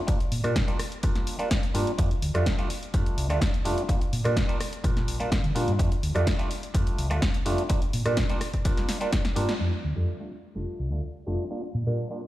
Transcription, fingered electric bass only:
0, 0, Header, 1, 3, 480
1, 0, Start_track
1, 0, Key_signature, -1, "major"
1, 0, Tempo, 476190
1, 81, Time_signature, 4, 2, 24, 8
1, 12368, End_track
2, 0, Start_track
2, 0, Title_t, "Fingered electric bass"
2, 0, Program_c, 0, 33
2, 320, Note_on_c, 0, 46, 96
2, 409, Note_off_c, 0, 46, 0
2, 447, Note_on_c, 0, 46, 91
2, 528, Note_off_c, 0, 46, 0
2, 1759, Note_on_c, 0, 43, 96
2, 1849, Note_off_c, 0, 43, 0
2, 2003, Note_on_c, 0, 41, 94
2, 2090, Note_off_c, 0, 41, 0
2, 2242, Note_on_c, 0, 38, 98
2, 2330, Note_off_c, 0, 38, 0
2, 2365, Note_on_c, 0, 41, 86
2, 2448, Note_off_c, 0, 41, 0
2, 2964, Note_on_c, 0, 29, 102
2, 3051, Note_off_c, 0, 29, 0
2, 3202, Note_on_c, 0, 36, 87
2, 3326, Note_off_c, 0, 36, 0
2, 3326, Note_on_c, 0, 38, 97
2, 3408, Note_off_c, 0, 38, 0
2, 3682, Note_on_c, 0, 29, 81
2, 3770, Note_off_c, 0, 29, 0
2, 4162, Note_on_c, 0, 46, 97
2, 4250, Note_off_c, 0, 46, 0
2, 4286, Note_on_c, 0, 46, 89
2, 4368, Note_off_c, 0, 46, 0
2, 4880, Note_on_c, 0, 46, 93
2, 5054, Note_off_c, 0, 46, 0
2, 5119, Note_on_c, 0, 34, 93
2, 5209, Note_off_c, 0, 34, 0
2, 5361, Note_on_c, 0, 46, 84
2, 5449, Note_off_c, 0, 46, 0
2, 5483, Note_on_c, 0, 50, 92
2, 5566, Note_off_c, 0, 50, 0
2, 5599, Note_on_c, 0, 46, 77
2, 5689, Note_off_c, 0, 46, 0
2, 5725, Note_on_c, 0, 43, 99
2, 5807, Note_off_c, 0, 43, 0
2, 5841, Note_on_c, 0, 41, 97
2, 5930, Note_off_c, 0, 41, 0
2, 6080, Note_on_c, 0, 38, 95
2, 6169, Note_off_c, 0, 38, 0
2, 6206, Note_on_c, 0, 41, 88
2, 6288, Note_off_c, 0, 41, 0
2, 6800, Note_on_c, 0, 29, 107
2, 6889, Note_off_c, 0, 29, 0
2, 7041, Note_on_c, 0, 36, 84
2, 7165, Note_off_c, 0, 36, 0
2, 7165, Note_on_c, 0, 38, 97
2, 7247, Note_off_c, 0, 38, 0
2, 7520, Note_on_c, 0, 29, 85
2, 7609, Note_off_c, 0, 29, 0
2, 7999, Note_on_c, 0, 46, 98
2, 8088, Note_off_c, 0, 46, 0
2, 8125, Note_on_c, 0, 46, 90
2, 8207, Note_off_c, 0, 46, 0
2, 9440, Note_on_c, 0, 43, 97
2, 9529, Note_off_c, 0, 43, 0
2, 9682, Note_on_c, 0, 41, 90
2, 9770, Note_off_c, 0, 41, 0
2, 9923, Note_on_c, 0, 38, 89
2, 10011, Note_off_c, 0, 38, 0
2, 10048, Note_on_c, 0, 41, 81
2, 10129, Note_off_c, 0, 41, 0
2, 10642, Note_on_c, 0, 29, 96
2, 10730, Note_off_c, 0, 29, 0
2, 10882, Note_on_c, 0, 36, 77
2, 11005, Note_off_c, 0, 36, 0
2, 11005, Note_on_c, 0, 38, 90
2, 11088, Note_off_c, 0, 38, 0
2, 11363, Note_on_c, 0, 29, 77
2, 11451, Note_off_c, 0, 29, 0
2, 11840, Note_on_c, 0, 46, 91
2, 11929, Note_off_c, 0, 46, 0
2, 11963, Note_on_c, 0, 46, 85
2, 12046, Note_off_c, 0, 46, 0
2, 12368, End_track
3, 0, Start_track
3, 0, Title_t, "Muted fingered electric bass strokes"
3, 5246, Note_on_c, 9, 29, 44
3, 5346, Note_off_c, 9, 29, 0
3, 12368, End_track
0, 0, End_of_file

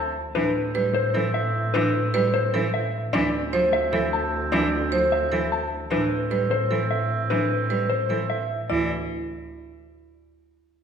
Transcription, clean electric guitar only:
0, 0, Header, 1, 2, 480
1, 0, Start_track
1, 0, Tempo, 397351
1, 425, Time_signature, 7, 3, 24, 8
1, 13089, End_track
2, 0, Start_track
2, 0, Title_t, "Clean electric guitar"
2, 0, Program_c, 0, 27
2, 0, Note_on_c, 0, 81, 87
2, 255, Note_off_c, 0, 81, 0
2, 422, Note_on_c, 0, 71, 108
2, 736, Note_off_c, 0, 71, 0
2, 1141, Note_on_c, 0, 72, 117
2, 1456, Note_off_c, 0, 72, 0
2, 1621, Note_on_c, 0, 76, 92
2, 1935, Note_off_c, 0, 76, 0
2, 2099, Note_on_c, 0, 71, 123
2, 2415, Note_off_c, 0, 71, 0
2, 2824, Note_on_c, 0, 72, 112
2, 3136, Note_off_c, 0, 72, 0
2, 3307, Note_on_c, 0, 76, 94
2, 3617, Note_off_c, 0, 76, 0
2, 3783, Note_on_c, 0, 74, 118
2, 4096, Note_off_c, 0, 74, 0
2, 4506, Note_on_c, 0, 76, 122
2, 4817, Note_off_c, 0, 76, 0
2, 4991, Note_on_c, 0, 81, 103
2, 5299, Note_off_c, 0, 81, 0
2, 5462, Note_on_c, 0, 74, 111
2, 5776, Note_off_c, 0, 74, 0
2, 6187, Note_on_c, 0, 76, 114
2, 6497, Note_off_c, 0, 76, 0
2, 6669, Note_on_c, 0, 81, 89
2, 6978, Note_off_c, 0, 81, 0
2, 7145, Note_on_c, 0, 71, 105
2, 7457, Note_off_c, 0, 71, 0
2, 7864, Note_on_c, 0, 72, 110
2, 8176, Note_off_c, 0, 72, 0
2, 8342, Note_on_c, 0, 76, 85
2, 8656, Note_off_c, 0, 76, 0
2, 8819, Note_on_c, 0, 71, 100
2, 9135, Note_off_c, 0, 71, 0
2, 9538, Note_on_c, 0, 72, 96
2, 9855, Note_off_c, 0, 72, 0
2, 10022, Note_on_c, 0, 76, 78
2, 10336, Note_off_c, 0, 76, 0
2, 10505, Note_on_c, 0, 74, 96
2, 10728, Note_off_c, 0, 74, 0
2, 13089, End_track
0, 0, End_of_file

